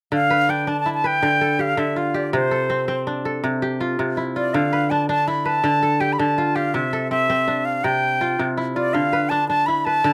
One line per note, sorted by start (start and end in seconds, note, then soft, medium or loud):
0.12 1.21 D3 medium
0.12 0.52 F5 medium
0.30 1.04 B4 medium
0.49 0.67 D4 medium
0.49 0.70 G5 medium
0.67 2.35 D4 medium
0.67 0.79 A5 medium
0.80 0.92 A5 medium
0.86 2.02 E4 medium
0.94 1.08 A5 medium
1.04 2.27 B4 medium
1.04 1.62 G5 loud
1.23 1.76 D3 medium
1.41 2.51 A4 medium
1.59 2.14 G4 medium
1.59 1.81 F5 medium
1.77 2.38 D3 medium
1.77 1.99 E5 medium
1.96 3.48 F4 medium
1.96 2.17 F5 medium
2.14 3.56 G4 medium
2.14 2.34 D5 medium
2.33 3.42 C3 medium
2.33 3.03 C5 medium
2.51 3.25 A4 medium
2.70 2.88 C4 medium
2.88 4.68 C4 medium
3.07 4.75 D4 medium
3.25 4.57 A4 medium
3.44 3.98 C3 medium
3.62 5.03 G4 medium
3.80 4.36 F4 medium
3.99 4.59 C3 medium
4.17 5.27 E4 medium
4.36 5.34 F4 medium
4.36 4.55 D5 medium
4.54 5.62 D3 medium
4.54 4.92 F5 medium
4.73 5.45 B4 medium
4.90 5.09 D4 medium
4.90 5.09 A5 medium
5.09 6.77 D4 medium
5.09 5.29 A5 medium
5.28 6.44 E4 medium
5.28 5.47 B5 medium
5.45 6.68 B4 medium
5.45 6.02 A5 medium
5.64 6.18 D3 medium
5.83 6.93 A4 medium
6.00 6.55 G4 medium
6.00 6.14 G5 medium
6.13 6.20 B5 medium
6.19 6.79 D3 medium
6.19 6.57 A5 medium
6.38 7.89 F4 medium
6.56 7.97 G4 medium
6.56 6.76 F5 medium
6.74 7.83 C3 medium
6.74 7.10 E5 medium
6.93 8.25 A4 medium
7.11 7.29 C4 medium
7.11 7.67 E5 medium
7.30 9.10 C4 medium
7.48 9.16 D4 medium
7.65 7.85 F5 medium
7.84 8.38 C3 medium
7.84 8.49 G5 medium
8.21 8.76 F4 medium
8.39 8.99 C3 medium
8.57 9.68 E4 medium
8.75 9.74 F4 medium
8.75 8.95 D5 medium
8.94 10.03 D3 medium
8.94 9.31 F5 medium
9.13 9.86 B4 medium
9.29 9.49 D4 medium
9.29 9.48 A5 medium
9.48 10.13 D4 medium
9.48 9.68 A5 medium
9.66 10.13 E4 medium
9.66 9.86 B5 medium
9.85 10.13 B4 medium
9.85 10.13 A5 medium
10.04 10.13 D3 medium